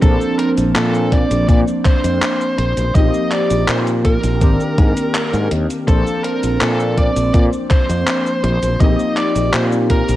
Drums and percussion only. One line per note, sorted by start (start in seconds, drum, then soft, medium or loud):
0.02 kick loud
0.02 closed hi-hat medium
0.02 cabasa soft
0.21 cabasa soft
0.39 closed hi-hat medium
0.58 closed hi-hat medium
0.58 cabasa medium
0.76 clap loud
0.76 closed hi-hat medium
0.76 cabasa soft
0.94 cabasa soft
1.12 kick medium
1.12 closed hi-hat medium
1.31 closed hi-hat medium
1.31 cabasa medium
1.49 kick loud
1.49 closed hi-hat medium
1.49 cabasa soft
1.68 cabasa soft
1.85 kick loud
1.85 clap medium
1.85 closed hi-hat medium
2.04 closed hi-hat medium
2.04 cabasa medium
2.22 clap loud
2.22 closed hi-hat medium
2.22 cabasa soft
2.41 cabasa soft
2.58 closed hi-hat medium
2.77 closed hi-hat soft
2.77 cabasa medium
2.95 kick loud
2.95 closed hi-hat medium
2.95 cabasa soft
3.14 cabasa soft
3.32 clap medium
3.32 closed hi-hat medium
3.50 closed hi-hat medium
3.50 cabasa medium
3.68 clap loud
3.68 closed hi-hat medium
3.68 cabasa soft
3.87 closed hi-hat soft
3.87 cabasa soft
4.05 kick medium
4.05 closed hi-hat medium
4.24 closed hi-hat medium
4.24 cabasa medium
4.41 kick loud
4.41 closed hi-hat medium
4.41 cabasa soft
4.60 cabasa soft
4.78 kick loud
4.78 closed hi-hat medium
4.97 closed hi-hat soft
4.97 cabasa medium
5.15 clap loud
5.15 closed hi-hat medium
5.15 cabasa soft
5.34 closed hi-hat soft
5.34 cabasa soft
5.51 closed hi-hat medium
5.70 closed hi-hat medium
5.70 cabasa soft
5.88 kick loud
5.88 closed hi-hat medium
5.88 cabasa soft
6.07 cabasa soft
6.24 closed hi-hat medium
6.43 closed hi-hat soft
6.43 cabasa medium
6.61 clap loud
6.61 closed hi-hat medium
6.61 cabasa soft
6.80 cabasa soft
6.98 kick medium
6.98 closed hi-hat medium
7.16 closed hi-hat medium
7.16 cabasa medium
7.34 kick loud
7.34 closed hi-hat medium
7.34 cabasa soft
7.53 cabasa soft
7.71 kick loud
7.71 clap medium
7.71 closed hi-hat medium
7.90 closed hi-hat soft
7.90 cabasa medium
8.07 clap loud
8.07 closed hi-hat medium
8.07 cabasa soft
8.26 cabasa soft
8.44 closed hi-hat medium
8.63 closed hi-hat soft
8.63 cabasa medium
8.80 kick loud
8.80 closed hi-hat medium
8.80 cabasa soft
8.99 cabasa soft
9.17 clap medium
9.17 closed hi-hat medium
9.36 closed hi-hat soft
9.36 cabasa medium
9.53 clap loud
9.53 closed hi-hat medium
9.53 cabasa soft
9.72 cabasa soft
9.90 kick medium
9.90 closed hi-hat medium
10.09 closed hi-hat soft
10.09 cabasa medium